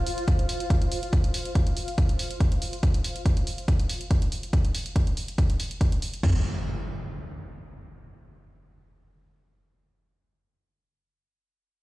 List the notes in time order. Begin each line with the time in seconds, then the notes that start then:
Already playing: F4 C5 F5
0.07 open hi-hat
0.18 closed hi-hat
0.28 kick, closed hi-hat
0.39 closed hi-hat
0.49 open hi-hat
0.60 closed hi-hat
0.70 kick, closed hi-hat
0.82 closed hi-hat
0.92 open hi-hat
1.03 closed hi-hat
1.13 kick, closed hi-hat
1.24 closed hi-hat
1.34 open hi-hat
1.45 closed hi-hat
1.55 kick, closed hi-hat
1.67 closed hi-hat
1.77 open hi-hat
1.88 closed hi-hat
1.98 kick, closed hi-hat
2.09 closed hi-hat
2.19 open hi-hat
2.31 closed hi-hat
2.40 kick, closed hi-hat
2.52 closed hi-hat
2.62 open hi-hat
2.73 closed hi-hat
2.83 kick, closed hi-hat
2.94 closed hi-hat
3.04 open hi-hat
3.16 closed hi-hat
3.26 kick, closed hi-hat
3.37 closed hi-hat
3.47 open hi-hat
3.58 closed hi-hat
3.68 kick, closed hi-hat
3.80 closed hi-hat
3.89 open hi-hat
4.01 closed hi-hat
4.11 kick, closed hi-hat
4.22 closed hi-hat
4.32 open hi-hat
4.43 closed hi-hat
4.53 kick, closed hi-hat
4.65 closed hi-hat
4.75 open hi-hat
4.86 closed hi-hat
4.96 kick, closed hi-hat
5.07 closed hi-hat
5.17 open hi-hat
5.28 closed hi-hat
5.38 kick, closed hi-hat
5.50 closed hi-hat
5.60 open hi-hat
5.71 closed hi-hat
5.81 kick, closed hi-hat
5.92 closed hi-hat
6.02 open hi-hat
6.14 closed hi-hat
6.23 kick, floor tom, crash, impact